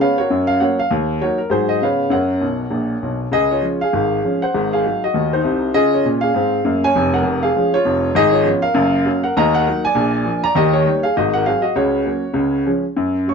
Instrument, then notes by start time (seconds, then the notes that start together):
upright piano
0.00 G#3 B3 C#4 B4 C#5 F5
0.18 F#4 A#4 C#5
0.30 F#2
0.47 F5
0.60 F#3 A#3 C#4 A#4 C#5 F#5
0.79 F5
0.91 D#2
1.21 F#3 A#3 D#4 F#4 A#4 C#5
1.38 A#4
1.50 G#2 F#3 G#3 D#4 F#4 G#4 C5
1.69 D#5
1.82 C#3 G#3 B3 C#4 B4 C#5 F5
2.10 F#2 A#4 C#5 F#5
2.41 B1 B2
2.71 A#1 A#2
3.02 B1 B2
3.31 C#2 C#3 G#4 D#5
3.51 F4 C#5
3.61 F3 G#3 C#4
3.81 G#4 F5
3.93 G#1 G#2
4.24 F3 G#3 C#4
4.42 C5 F#5
4.54 G#1 G#2
4.73 G#4 F5
4.85 F#3 G#3 D#4
5.04 F#4 D#5
5.14 D#2 D#3
5.33 D#4 C5
5.44 C2 C3
5.74 C#3 F4 G#4 D#5
5.94 F4 C#5
6.05 A#2 C#4
6.21 G#4 F5
6.34 G#2 C4
6.65 F#2 A#3
6.84 C#5 G#5
6.95 F1 F2
7.14 A#4 F#5
7.23 F1 F2
7.43 G#4 F5
7.56 F3 G#3 C#4
7.74 F4 C#5
7.85 F1 F2
8.15 G#1 G#2 G#4 D#5
8.32 F4 C#5
8.45 F3 B3 C#4
8.62 A#4 F5
8.74 F#1 F#2
9.05 F#3 A#3 C#4
9.24 A#4 F#5
9.37 D#2 D#3 D#5 A#5
9.54 A#4 F#5
9.67 F#3 A#3 D#4
9.85 D5 G#5
9.95 A#1 A#2
10.25 F3 A#3 D4
10.44 D5 A#5
10.55 D#2 D#3 G4 D#5
10.73 G4 C#5
10.86 G3 A#3 D#4
11.03 G#4 F5
11.17 G#1 G#2 F#4 D#5
11.33 A#4 F#5
11.46 F#3 G#3 C4 G#4 F5
11.62 F#4 D#5
11.76 C#2 C#3 F#4 C#5
12.05 F#3 A#3 C#4
12.34 C#2 C#3
12.66 F3 G#3 C#4
12.96 F#2
13.27 F#3 A#3 C#4 C#5 C#6